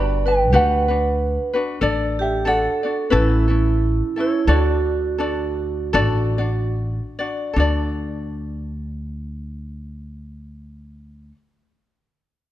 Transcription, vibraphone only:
0.00 0.24 D5 medium
0.27 0.52 B4 medium
0.54 1.51 B4 medium
2.19 2.45 G4 medium
2.47 3.09 A4 medium
3.14 4.15 E4 medium
4.20 4.47 E4 medium
4.49 6.69 F#4 medium

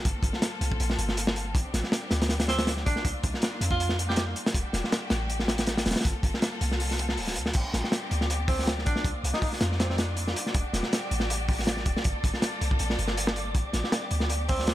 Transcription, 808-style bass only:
0.05 0.14 G1 loud
0.23 0.32 G1 medium
0.61 0.79 C2 medium
0.80 0.97 A#1 loud
0.98 1.53 G1 medium
1.55 1.64 A1 loud
1.74 1.83 A1 medium
2.11 2.85 D2 medium
2.87 2.95 A1 medium
3.05 3.14 C2 loud
3.24 3.33 C2 medium
3.61 4.35 F2 medium
4.55 4.64 E1 loud
4.74 4.83 E1 medium
5.11 5.85 A1 medium
5.86 5.95 E1 medium
6.05 6.14 G1 loud
6.23 6.32 G1 medium
6.61 7.19 C2 medium
7.17 7.38 D1 medium
7.36 7.53 D2 loud
7.55 7.64 A1 loud
7.74 7.83 A1 medium
8.11 8.85 D2 medium
8.87 8.95 A1 medium
9.05 9.14 C2 loud
9.24 9.33 C2 medium
9.61 10.35 F2 medium
10.55 10.64 E1 loud
10.73 10.83 E1 medium
11.11 11.85 A1 loud
11.86 11.95 E1 medium
12.05 12.14 G1 loud
12.24 12.33 G1 medium
12.61 12.80 C2 medium
12.80 12.97 A#1 loud
12.99 13.54 G1 medium
13.55 13.64 A1 loud
13.74 13.83 A1 medium
14.11 14.74 D2 medium

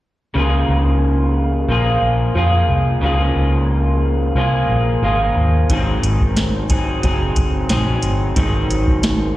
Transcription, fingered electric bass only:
0.35 0.62 C#2 medium
0.69 1.65 C#2 medium
1.69 1.96 A#1 medium
2.02 2.29 A#1 medium
2.35 2.62 F2 medium
2.69 2.96 C2 medium
3.02 3.29 C#2 medium
3.35 4.32 C#2 medium
4.35 4.62 C2 medium
4.69 4.96 A#1 medium
5.02 5.29 G#1 medium
5.36 5.63 D#2 medium
5.70 5.96 G#1 medium
6.03 6.99 G#1 medium
7.03 7.30 F#1 medium
7.36 7.63 F#1 medium
7.70 7.96 A#1 medium
8.03 8.30 G1 medium
8.36 8.63 G#1 medium
8.69 9.37 G#1 medium

